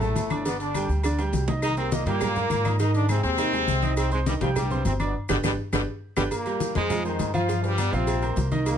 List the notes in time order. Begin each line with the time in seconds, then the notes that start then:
Already playing: A1 A2 A3
0.01 A3 A4 A5, high conga, low conga, maracas
0.15 G1, cowbell, high conga, low timbale, low agogo, maracas
0.30 D4 D5 D6, high conga, low agogo, claves, maracas
0.45 B2 D3 B3 D4 D5, cowbell, high conga, low agogo, maracas
0.60 D3 D4, cowbell, high conga, maracas
0.74 G3 G4 G5, cowbell, high conga, low agogo, claves, maracas
0.89 D2, high conga, maracas
1.03 D3 D4 D5, cowbell, high conga, low agogo, claves, maracas
1.19 G3 G4 G5, high conga, high timbale, low agogo, maracas
1.33 C2, cowbell, high conga, low timbale, maracas
1.48 D#4 D#5 D#6, high conga, low timbale, low agogo, maracas
1.62 D#3 D#4, cowbell, high conga, low agogo, claves, maracas
1.77 C3 A#3 C4 A#4 A#5, high conga, low agogo, maracas
1.92 A#2 D#3 A#3 D#4 D#5, cowbell, high conga, maracas
2.05 G2 A#2 G3 A#3 G4 G5, cowbell, high conga, low agogo, maracas
2.21 cowbell, high conga, low conga, low agogo, claves, maracas
2.36 A#3 A#4 A#5, high conga, low conga, maracas
2.50 G#2, cowbell, high conga, low agogo, maracas
2.65 D#4 D#5 D#6, high conga, low agogo, claves, maracas
2.79 D#3 D#4 D#5, cowbell, high conga, low agogo, maracas
2.94 D3 D4, cowbell, high conga, maracas
3.09 C3 G#3 C4 G#4 G#5, cowbell, high conga, low agogo, claves, maracas
3.23 D#2 C3 C4, high conga, maracas
3.38 D#3 D#4 D#5, cowbell, high conga, low agogo, claves, maracas
3.53 G#3 G#4 G#5, high conga, low agogo, maracas
3.68 C2, cowbell, high conga, maracas
3.82 D#4 D#5 D#6, high conga, low agogo, maracas
3.97 C3 C4, cowbell, high conga, low agogo, claves, maracas
4.12 G#2 G#3 C4 C5 C6, high conga, low agogo, maracas
4.26 G2 D#3 G3 D#4 D#5, cowbell, high conga, maracas
4.41 C2 F3 G3 F4 G4 G5, cowbell, high conga, low agogo, maracas
4.56 G2 G3, cowbell, high conga, low conga, low agogo, claves, maracas
4.71 C4 C5 C6, high conga, low conga, maracas
4.85 G1 C3 C4, cowbell, high conga, low timbale, low agogo, maracas
5.00 B2 B3 D4 D5 D6, high conga, low agogo, claves, maracas
5.29 G1 B2 D3 G3 D4 G4 B4, cowbell, high conga, high timbale, claves, maracas
5.44 G1 B2 D3 G3 D4 G4 B4, cowbell, high conga, high timbale, claves, maracas
5.73 G1 B2 D3 G3 D4 G4 B4, cowbell, high conga, high timbale, claves, maracas
6.17 G1 B2 D3 G3 D4 G4 B4, cowbell, high conga, high timbale, claves, maracas
6.31 A#2 A#3, cowbell, high conga, low agogo, maracas
6.46 G3 G4 A#4, high conga, low agogo, maracas
6.60 cowbell, high conga, maracas
6.75 F2 G#2 G#3 G#4 C5, cowbell, high conga, low agogo, maracas
6.90 F3 F4 F5, cowbell, high conga, low conga, low agogo, maracas
7.05 D#3 G#3 D#4 G#4 C5, high conga, maracas
7.19 G2, cowbell, high conga, low timbale, low agogo, maracas
7.34 F3 F4 F5, high conga, low agogo, maracas
7.48 F3 F4 F5, cowbell, high conga, low agogo, maracas
7.63 G2 G3, cowbell, high conga, maracas
7.78 B3 B4 D5, cowbell, high conga, low agogo, maracas
7.92 A#1 C3 F3 C4 F4 F5, high conga, maracas
8.07 cowbell, high conga, low agogo, maracas
8.22 A#3 A#4 C5, high conga, low agogo, maracas
8.36 C2, cowbell, high conga, low timbale, maracas
8.51 D#3 D#4 D#5, high conga, low agogo, maracas
8.66 A#2 A#3, cowbell, high conga, low agogo, maracas